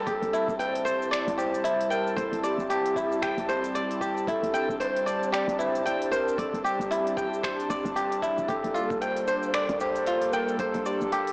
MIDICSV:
0, 0, Header, 1, 6, 480
1, 0, Start_track
1, 0, Tempo, 526316
1, 60, Time_signature, 4, 2, 24, 8
1, 10329, End_track
2, 0, Start_track
2, 0, Title_t, "Kora"
2, 0, Program_c, 0, 46
2, 0, Note_on_c, 0, 69, 75
2, 0, Note_on_c, 0, 72, 96
2, 0, Note_on_c, 0, 74, 72
2, 0, Note_on_c, 0, 79, 76
2, 60, Note_on_c, 0, 67, 83
2, 186, Note_off_c, 0, 72, 0
2, 303, Note_on_c, 0, 64, 76
2, 350, Note_off_c, 0, 74, 0
2, 536, Note_off_c, 0, 79, 0
2, 540, Note_on_c, 0, 79, 103
2, 774, Note_on_c, 0, 72, 105
2, 917, Note_off_c, 0, 69, 0
2, 1013, Note_on_c, 0, 74, 86
2, 1251, Note_off_c, 0, 67, 0
2, 1255, Note_on_c, 0, 67, 75
2, 1390, Note_off_c, 0, 79, 0
2, 1491, Note_off_c, 0, 64, 0
2, 1495, Note_on_c, 0, 64, 83
2, 1736, Note_on_c, 0, 79, 106
2, 1857, Note_off_c, 0, 72, 0
2, 1974, Note_on_c, 0, 72, 99
2, 2023, Note_off_c, 0, 74, 0
2, 2220, Note_on_c, 0, 74, 77
2, 2457, Note_off_c, 0, 67, 0
2, 2461, Note_on_c, 0, 67, 89
2, 2586, Note_off_c, 0, 79, 0
2, 2695, Note_off_c, 0, 64, 0
2, 2699, Note_on_c, 0, 64, 75
2, 2939, Note_on_c, 0, 79, 103
2, 3057, Note_off_c, 0, 72, 0
2, 3180, Note_on_c, 0, 72, 100
2, 3230, Note_off_c, 0, 74, 0
2, 3419, Note_on_c, 0, 74, 86
2, 3654, Note_off_c, 0, 67, 0
2, 3657, Note_on_c, 0, 67, 81
2, 3789, Note_off_c, 0, 79, 0
2, 3898, Note_off_c, 0, 64, 0
2, 3901, Note_on_c, 0, 64, 82
2, 4138, Note_on_c, 0, 79, 107
2, 4263, Note_off_c, 0, 72, 0
2, 4378, Note_on_c, 0, 72, 105
2, 4430, Note_off_c, 0, 74, 0
2, 4616, Note_on_c, 0, 74, 75
2, 4852, Note_off_c, 0, 67, 0
2, 4856, Note_on_c, 0, 67, 87
2, 4987, Note_off_c, 0, 79, 0
2, 5093, Note_off_c, 0, 64, 0
2, 5096, Note_on_c, 0, 64, 80
2, 5341, Note_on_c, 0, 79, 99
2, 5461, Note_off_c, 0, 72, 0
2, 5577, Note_on_c, 0, 72, 102
2, 5626, Note_off_c, 0, 74, 0
2, 5819, Note_on_c, 0, 74, 84
2, 6055, Note_off_c, 0, 67, 0
2, 6059, Note_on_c, 0, 67, 77
2, 6191, Note_off_c, 0, 79, 0
2, 6296, Note_off_c, 0, 64, 0
2, 6299, Note_on_c, 0, 64, 79
2, 6538, Note_on_c, 0, 79, 102
2, 6660, Note_off_c, 0, 72, 0
2, 6779, Note_on_c, 0, 72, 102
2, 6829, Note_off_c, 0, 74, 0
2, 7021, Note_on_c, 0, 74, 76
2, 7253, Note_off_c, 0, 67, 0
2, 7257, Note_on_c, 0, 67, 79
2, 7387, Note_off_c, 0, 79, 0
2, 7496, Note_off_c, 0, 64, 0
2, 7499, Note_on_c, 0, 64, 78
2, 7733, Note_off_c, 0, 67, 0
2, 7737, Note_on_c, 0, 67, 83
2, 7862, Note_off_c, 0, 72, 0
2, 7974, Note_on_c, 0, 65, 76
2, 8029, Note_off_c, 0, 64, 0
2, 8032, Note_off_c, 0, 74, 0
2, 8221, Note_on_c, 0, 79, 96
2, 8460, Note_on_c, 0, 72, 97
2, 8703, Note_on_c, 0, 74, 78
2, 8941, Note_off_c, 0, 67, 0
2, 8945, Note_on_c, 0, 67, 72
2, 9070, Note_off_c, 0, 79, 0
2, 9181, Note_off_c, 0, 65, 0
2, 9185, Note_on_c, 0, 65, 83
2, 9423, Note_on_c, 0, 79, 100
2, 9543, Note_off_c, 0, 72, 0
2, 9661, Note_on_c, 0, 72, 97
2, 9713, Note_off_c, 0, 74, 0
2, 9902, Note_on_c, 0, 74, 76
2, 10141, Note_off_c, 0, 67, 0
2, 10145, Note_on_c, 0, 67, 83
2, 10273, Note_off_c, 0, 79, 0
2, 10329, Note_off_c, 0, 65, 0
2, 10329, Note_off_c, 0, 67, 0
2, 10329, Note_off_c, 0, 72, 0
2, 10329, Note_off_c, 0, 74, 0
2, 10329, End_track
3, 0, Start_track
3, 0, Title_t, "Native American-style wooden flute"
3, 0, Program_c, 1, 77
3, 50, Note_on_c, 1, 69, 103
3, 501, Note_off_c, 1, 69, 0
3, 535, Note_on_c, 1, 72, 105
3, 984, Note_off_c, 1, 72, 0
3, 1015, Note_on_c, 1, 74, 119
3, 1263, Note_on_c, 1, 72, 109
3, 1277, Note_off_c, 1, 74, 0
3, 1737, Note_on_c, 1, 70, 97
3, 1751, Note_off_c, 1, 72, 0
3, 1975, Note_on_c, 1, 69, 101
3, 1989, Note_off_c, 1, 70, 0
3, 2218, Note_off_c, 1, 69, 0
3, 2225, Note_on_c, 1, 67, 104
3, 3626, Note_off_c, 1, 67, 0
3, 3914, Note_on_c, 1, 69, 99
3, 4354, Note_off_c, 1, 69, 0
3, 4385, Note_on_c, 1, 72, 116
3, 4829, Note_off_c, 1, 72, 0
3, 4863, Note_on_c, 1, 74, 115
3, 5095, Note_on_c, 1, 72, 104
3, 5108, Note_off_c, 1, 74, 0
3, 5586, Note_on_c, 1, 70, 95
3, 5599, Note_off_c, 1, 72, 0
3, 5818, Note_on_c, 1, 69, 102
3, 5832, Note_off_c, 1, 70, 0
3, 6053, Note_on_c, 1, 67, 102
3, 6067, Note_off_c, 1, 69, 0
3, 7497, Note_off_c, 1, 67, 0
3, 7742, Note_on_c, 1, 69, 100
3, 8220, Note_on_c, 1, 72, 112
3, 8234, Note_off_c, 1, 69, 0
3, 8693, Note_off_c, 1, 72, 0
3, 8698, Note_on_c, 1, 74, 115
3, 8922, Note_off_c, 1, 74, 0
3, 8941, Note_on_c, 1, 72, 110
3, 9416, Note_on_c, 1, 70, 99
3, 9430, Note_off_c, 1, 72, 0
3, 9663, Note_on_c, 1, 69, 105
3, 9676, Note_off_c, 1, 70, 0
3, 9899, Note_on_c, 1, 67, 102
3, 9913, Note_off_c, 1, 69, 0
3, 10329, Note_off_c, 1, 67, 0
3, 10329, End_track
4, 0, Start_track
4, 0, Title_t, "Analog synth pad"
4, 0, Program_c, 2, 89
4, 0, Note_on_c, 2, 81, 98
4, 59, Note_on_c, 2, 55, 86
4, 59, Note_on_c, 2, 64, 75
4, 61, Note_on_c, 2, 60, 82
4, 3863, Note_off_c, 2, 64, 0
4, 3909, Note_on_c, 2, 62, 81
4, 7703, Note_off_c, 2, 55, 0
4, 7704, Note_off_c, 2, 60, 0
4, 7704, Note_off_c, 2, 81, 0
4, 7741, Note_on_c, 2, 69, 98
4, 7742, Note_on_c, 2, 55, 88
4, 7745, Note_on_c, 2, 58, 84
4, 10329, Note_off_c, 2, 55, 0
4, 10329, Note_off_c, 2, 58, 0
4, 10329, Note_off_c, 2, 62, 0
4, 10329, Note_off_c, 2, 69, 0
4, 10329, End_track
5, 0, Start_track
5, 0, Title_t, "FM bass"
5, 0, Program_c, 3, 39
5, 62, Note_on_c, 3, 31, 102
5, 177, Note_off_c, 3, 31, 0
5, 200, Note_on_c, 3, 31, 102
5, 283, Note_off_c, 3, 31, 0
5, 440, Note_on_c, 3, 31, 89
5, 993, Note_off_c, 3, 31, 0
5, 1160, Note_on_c, 3, 31, 96
5, 1713, Note_off_c, 3, 31, 0
5, 1978, Note_on_c, 3, 31, 103
5, 2095, Note_off_c, 3, 31, 0
5, 2116, Note_on_c, 3, 31, 96
5, 2202, Note_off_c, 3, 31, 0
5, 2353, Note_on_c, 3, 31, 87
5, 2909, Note_off_c, 3, 31, 0
5, 3075, Note_on_c, 3, 31, 98
5, 3631, Note_off_c, 3, 31, 0
5, 3896, Note_on_c, 3, 31, 104
5, 4014, Note_off_c, 3, 31, 0
5, 4037, Note_on_c, 3, 31, 103
5, 4122, Note_off_c, 3, 31, 0
5, 4278, Note_on_c, 3, 31, 86
5, 4832, Note_off_c, 3, 31, 0
5, 4993, Note_on_c, 3, 31, 99
5, 5549, Note_off_c, 3, 31, 0
5, 5819, Note_on_c, 3, 31, 98
5, 5935, Note_off_c, 3, 31, 0
5, 5958, Note_on_c, 3, 31, 99
5, 6042, Note_off_c, 3, 31, 0
5, 6195, Note_on_c, 3, 31, 86
5, 6751, Note_off_c, 3, 31, 0
5, 7018, Note_on_c, 3, 31, 84
5, 7135, Note_off_c, 3, 31, 0
5, 7158, Note_on_c, 3, 31, 100
5, 7601, Note_off_c, 3, 31, 0
5, 7641, Note_on_c, 3, 26, 92
5, 7724, Note_off_c, 3, 26, 0
5, 7741, Note_on_c, 3, 31, 101
5, 7856, Note_off_c, 3, 31, 0
5, 7880, Note_on_c, 3, 31, 99
5, 7963, Note_off_c, 3, 31, 0
5, 8120, Note_on_c, 3, 31, 88
5, 8673, Note_off_c, 3, 31, 0
5, 8837, Note_on_c, 3, 34, 95
5, 9392, Note_off_c, 3, 34, 0
5, 9656, Note_on_c, 3, 31, 104
5, 9774, Note_off_c, 3, 31, 0
5, 9799, Note_on_c, 3, 31, 104
5, 9883, Note_off_c, 3, 31, 0
5, 10045, Note_on_c, 3, 31, 86
5, 10329, Note_off_c, 3, 31, 0
5, 10329, End_track
6, 0, Start_track
6, 0, Title_t, "Drums"
6, 63, Note_on_c, 9, 36, 123
6, 64, Note_on_c, 9, 46, 72
6, 67, Note_on_c, 9, 82, 36
6, 154, Note_off_c, 9, 36, 0
6, 156, Note_off_c, 9, 46, 0
6, 159, Note_off_c, 9, 82, 0
6, 206, Note_on_c, 9, 46, 45
6, 298, Note_off_c, 9, 46, 0
6, 310, Note_on_c, 9, 82, 75
6, 401, Note_off_c, 9, 82, 0
6, 441, Note_on_c, 9, 36, 98
6, 448, Note_on_c, 9, 82, 47
6, 532, Note_off_c, 9, 36, 0
6, 540, Note_off_c, 9, 82, 0
6, 548, Note_on_c, 9, 46, 68
6, 551, Note_on_c, 9, 82, 31
6, 639, Note_off_c, 9, 46, 0
6, 642, Note_off_c, 9, 82, 0
6, 688, Note_on_c, 9, 46, 47
6, 779, Note_off_c, 9, 46, 0
6, 789, Note_on_c, 9, 82, 75
6, 881, Note_off_c, 9, 82, 0
6, 932, Note_on_c, 9, 82, 44
6, 1024, Note_off_c, 9, 82, 0
6, 1031, Note_on_c, 9, 26, 89
6, 1031, Note_on_c, 9, 46, 69
6, 1034, Note_on_c, 9, 82, 35
6, 1122, Note_off_c, 9, 26, 0
6, 1122, Note_off_c, 9, 46, 0
6, 1125, Note_off_c, 9, 82, 0
6, 1167, Note_on_c, 9, 46, 44
6, 1258, Note_off_c, 9, 46, 0
6, 1268, Note_on_c, 9, 82, 75
6, 1360, Note_off_c, 9, 82, 0
6, 1407, Note_on_c, 9, 46, 34
6, 1409, Note_on_c, 9, 82, 45
6, 1498, Note_off_c, 9, 46, 0
6, 1501, Note_off_c, 9, 82, 0
6, 1505, Note_on_c, 9, 46, 73
6, 1507, Note_on_c, 9, 82, 36
6, 1596, Note_off_c, 9, 46, 0
6, 1599, Note_off_c, 9, 82, 0
6, 1647, Note_on_c, 9, 46, 47
6, 1738, Note_off_c, 9, 46, 0
6, 1748, Note_on_c, 9, 82, 79
6, 1839, Note_off_c, 9, 82, 0
6, 1890, Note_on_c, 9, 82, 47
6, 1980, Note_on_c, 9, 36, 117
6, 1981, Note_off_c, 9, 82, 0
6, 1986, Note_on_c, 9, 46, 71
6, 1989, Note_on_c, 9, 82, 35
6, 2071, Note_off_c, 9, 36, 0
6, 2077, Note_off_c, 9, 46, 0
6, 2080, Note_off_c, 9, 82, 0
6, 2125, Note_on_c, 9, 46, 45
6, 2217, Note_off_c, 9, 46, 0
6, 2226, Note_on_c, 9, 82, 86
6, 2317, Note_off_c, 9, 82, 0
6, 2368, Note_on_c, 9, 82, 45
6, 2459, Note_off_c, 9, 82, 0
6, 2466, Note_on_c, 9, 46, 67
6, 2469, Note_on_c, 9, 82, 33
6, 2557, Note_off_c, 9, 46, 0
6, 2560, Note_off_c, 9, 82, 0
6, 2605, Note_on_c, 9, 46, 46
6, 2697, Note_off_c, 9, 46, 0
6, 2699, Note_on_c, 9, 36, 109
6, 2707, Note_on_c, 9, 82, 79
6, 2790, Note_off_c, 9, 36, 0
6, 2798, Note_off_c, 9, 82, 0
6, 2846, Note_on_c, 9, 82, 51
6, 2937, Note_off_c, 9, 82, 0
6, 2940, Note_on_c, 9, 36, 110
6, 2942, Note_on_c, 9, 26, 84
6, 2942, Note_on_c, 9, 46, 70
6, 2945, Note_on_c, 9, 82, 34
6, 3031, Note_off_c, 9, 36, 0
6, 3033, Note_off_c, 9, 26, 0
6, 3033, Note_off_c, 9, 46, 0
6, 3036, Note_off_c, 9, 82, 0
6, 3081, Note_on_c, 9, 46, 46
6, 3172, Note_off_c, 9, 46, 0
6, 3184, Note_on_c, 9, 82, 79
6, 3275, Note_off_c, 9, 82, 0
6, 3319, Note_on_c, 9, 46, 31
6, 3322, Note_on_c, 9, 82, 45
6, 3411, Note_off_c, 9, 46, 0
6, 3414, Note_off_c, 9, 82, 0
6, 3424, Note_on_c, 9, 46, 63
6, 3427, Note_on_c, 9, 82, 33
6, 3515, Note_off_c, 9, 46, 0
6, 3518, Note_off_c, 9, 82, 0
6, 3564, Note_on_c, 9, 46, 46
6, 3656, Note_off_c, 9, 46, 0
6, 3659, Note_on_c, 9, 36, 61
6, 3666, Note_on_c, 9, 82, 79
6, 3750, Note_off_c, 9, 36, 0
6, 3757, Note_off_c, 9, 82, 0
6, 3806, Note_on_c, 9, 82, 47
6, 3897, Note_off_c, 9, 82, 0
6, 3898, Note_on_c, 9, 36, 127
6, 3905, Note_on_c, 9, 46, 70
6, 3908, Note_on_c, 9, 82, 35
6, 3989, Note_off_c, 9, 36, 0
6, 3996, Note_off_c, 9, 46, 0
6, 3999, Note_off_c, 9, 82, 0
6, 4046, Note_on_c, 9, 46, 47
6, 4137, Note_off_c, 9, 46, 0
6, 4148, Note_on_c, 9, 82, 79
6, 4239, Note_off_c, 9, 82, 0
6, 4279, Note_on_c, 9, 36, 107
6, 4290, Note_on_c, 9, 82, 45
6, 4370, Note_off_c, 9, 36, 0
6, 4381, Note_off_c, 9, 82, 0
6, 4386, Note_on_c, 9, 46, 62
6, 4389, Note_on_c, 9, 82, 35
6, 4477, Note_off_c, 9, 46, 0
6, 4480, Note_off_c, 9, 82, 0
6, 4528, Note_on_c, 9, 46, 44
6, 4619, Note_off_c, 9, 46, 0
6, 4628, Note_on_c, 9, 82, 88
6, 4719, Note_off_c, 9, 82, 0
6, 4770, Note_on_c, 9, 82, 49
6, 4861, Note_off_c, 9, 82, 0
6, 4867, Note_on_c, 9, 26, 81
6, 4867, Note_on_c, 9, 46, 67
6, 4870, Note_on_c, 9, 82, 34
6, 4958, Note_off_c, 9, 26, 0
6, 4958, Note_off_c, 9, 46, 0
6, 4961, Note_off_c, 9, 82, 0
6, 5006, Note_on_c, 9, 46, 43
6, 5097, Note_off_c, 9, 46, 0
6, 5109, Note_on_c, 9, 82, 84
6, 5200, Note_off_c, 9, 82, 0
6, 5246, Note_on_c, 9, 46, 34
6, 5249, Note_on_c, 9, 82, 49
6, 5337, Note_off_c, 9, 46, 0
6, 5340, Note_off_c, 9, 82, 0
6, 5350, Note_on_c, 9, 46, 64
6, 5353, Note_on_c, 9, 82, 34
6, 5441, Note_off_c, 9, 46, 0
6, 5444, Note_off_c, 9, 82, 0
6, 5488, Note_on_c, 9, 46, 44
6, 5580, Note_off_c, 9, 46, 0
6, 5589, Note_on_c, 9, 82, 80
6, 5680, Note_off_c, 9, 82, 0
6, 5730, Note_on_c, 9, 82, 47
6, 5821, Note_off_c, 9, 82, 0
6, 5821, Note_on_c, 9, 36, 115
6, 5826, Note_on_c, 9, 46, 70
6, 5829, Note_on_c, 9, 82, 35
6, 5912, Note_off_c, 9, 36, 0
6, 5918, Note_off_c, 9, 46, 0
6, 5921, Note_off_c, 9, 82, 0
6, 5968, Note_on_c, 9, 46, 43
6, 6060, Note_off_c, 9, 46, 0
6, 6073, Note_on_c, 9, 82, 82
6, 6164, Note_off_c, 9, 82, 0
6, 6211, Note_on_c, 9, 46, 29
6, 6214, Note_on_c, 9, 82, 46
6, 6302, Note_off_c, 9, 46, 0
6, 6305, Note_off_c, 9, 82, 0
6, 6309, Note_on_c, 9, 46, 63
6, 6312, Note_on_c, 9, 82, 32
6, 6400, Note_off_c, 9, 46, 0
6, 6403, Note_off_c, 9, 82, 0
6, 6447, Note_on_c, 9, 46, 46
6, 6538, Note_off_c, 9, 46, 0
6, 6541, Note_on_c, 9, 36, 116
6, 6547, Note_on_c, 9, 82, 79
6, 6632, Note_off_c, 9, 36, 0
6, 6638, Note_off_c, 9, 82, 0
6, 6691, Note_on_c, 9, 82, 47
6, 6781, Note_on_c, 9, 36, 103
6, 6782, Note_off_c, 9, 82, 0
6, 6787, Note_on_c, 9, 26, 78
6, 6787, Note_on_c, 9, 46, 62
6, 6790, Note_on_c, 9, 82, 38
6, 6872, Note_off_c, 9, 36, 0
6, 6878, Note_off_c, 9, 26, 0
6, 6878, Note_off_c, 9, 46, 0
6, 6881, Note_off_c, 9, 82, 0
6, 6929, Note_on_c, 9, 46, 40
6, 7020, Note_off_c, 9, 46, 0
6, 7026, Note_on_c, 9, 82, 85
6, 7117, Note_off_c, 9, 82, 0
6, 7163, Note_on_c, 9, 46, 30
6, 7166, Note_on_c, 9, 82, 47
6, 7254, Note_off_c, 9, 46, 0
6, 7257, Note_off_c, 9, 82, 0
6, 7265, Note_on_c, 9, 46, 67
6, 7268, Note_on_c, 9, 82, 33
6, 7356, Note_off_c, 9, 46, 0
6, 7359, Note_off_c, 9, 82, 0
6, 7406, Note_on_c, 9, 46, 43
6, 7497, Note_off_c, 9, 46, 0
6, 7501, Note_on_c, 9, 36, 60
6, 7507, Note_on_c, 9, 82, 81
6, 7592, Note_off_c, 9, 36, 0
6, 7599, Note_off_c, 9, 82, 0
6, 7644, Note_on_c, 9, 82, 49
6, 7735, Note_off_c, 9, 82, 0
6, 7741, Note_on_c, 9, 36, 123
6, 7743, Note_on_c, 9, 46, 65
6, 7746, Note_on_c, 9, 82, 35
6, 7832, Note_off_c, 9, 36, 0
6, 7834, Note_off_c, 9, 46, 0
6, 7837, Note_off_c, 9, 82, 0
6, 7883, Note_on_c, 9, 46, 44
6, 7974, Note_off_c, 9, 46, 0
6, 7985, Note_on_c, 9, 82, 80
6, 8076, Note_off_c, 9, 82, 0
6, 8120, Note_on_c, 9, 36, 110
6, 8124, Note_on_c, 9, 82, 46
6, 8211, Note_off_c, 9, 36, 0
6, 8215, Note_off_c, 9, 82, 0
6, 8224, Note_on_c, 9, 46, 61
6, 8227, Note_on_c, 9, 82, 32
6, 8315, Note_off_c, 9, 46, 0
6, 8318, Note_off_c, 9, 82, 0
6, 8359, Note_on_c, 9, 46, 42
6, 8450, Note_off_c, 9, 46, 0
6, 8460, Note_on_c, 9, 82, 73
6, 8551, Note_off_c, 9, 82, 0
6, 8600, Note_on_c, 9, 82, 48
6, 8691, Note_off_c, 9, 82, 0
6, 8699, Note_on_c, 9, 26, 82
6, 8699, Note_on_c, 9, 46, 65
6, 8702, Note_on_c, 9, 82, 32
6, 8790, Note_off_c, 9, 26, 0
6, 8790, Note_off_c, 9, 46, 0
6, 8793, Note_off_c, 9, 82, 0
6, 8838, Note_on_c, 9, 46, 41
6, 8929, Note_off_c, 9, 46, 0
6, 8940, Note_on_c, 9, 82, 79
6, 9032, Note_off_c, 9, 82, 0
6, 9079, Note_on_c, 9, 46, 31
6, 9081, Note_on_c, 9, 82, 48
6, 9170, Note_off_c, 9, 46, 0
6, 9173, Note_off_c, 9, 82, 0
6, 9179, Note_on_c, 9, 46, 62
6, 9182, Note_on_c, 9, 82, 32
6, 9271, Note_off_c, 9, 46, 0
6, 9273, Note_off_c, 9, 82, 0
6, 9317, Note_on_c, 9, 46, 43
6, 9408, Note_off_c, 9, 46, 0
6, 9421, Note_on_c, 9, 82, 77
6, 9512, Note_off_c, 9, 82, 0
6, 9562, Note_on_c, 9, 82, 47
6, 9653, Note_off_c, 9, 82, 0
6, 9658, Note_on_c, 9, 46, 68
6, 9659, Note_on_c, 9, 36, 113
6, 9661, Note_on_c, 9, 82, 32
6, 9749, Note_off_c, 9, 46, 0
6, 9750, Note_off_c, 9, 36, 0
6, 9752, Note_off_c, 9, 82, 0
6, 9797, Note_on_c, 9, 46, 45
6, 9888, Note_off_c, 9, 46, 0
6, 9902, Note_on_c, 9, 82, 74
6, 9993, Note_off_c, 9, 82, 0
6, 10043, Note_on_c, 9, 82, 45
6, 10134, Note_off_c, 9, 82, 0
6, 10144, Note_on_c, 9, 46, 65
6, 10147, Note_on_c, 9, 82, 31
6, 10235, Note_off_c, 9, 46, 0
6, 10238, Note_off_c, 9, 82, 0
6, 10282, Note_on_c, 9, 46, 44
6, 10329, Note_off_c, 9, 46, 0
6, 10329, End_track
0, 0, End_of_file